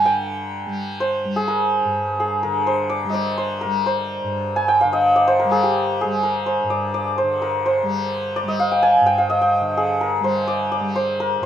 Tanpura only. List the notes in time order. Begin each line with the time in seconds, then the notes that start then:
Already playing: G2 D3 G3
0.05 D3
0.67 G3
1.25 G3
1.85 G2
2.44 D3
3.05 G3
3.65 G3
4.24 G2
4.84 D3
5.44 G3
6.04 G3
6.64 G2
7.23 D3
7.83 G3
8.43 G3
9.01 G2
9.61 D3
10.20 G3
10.81 G3
11.41 G2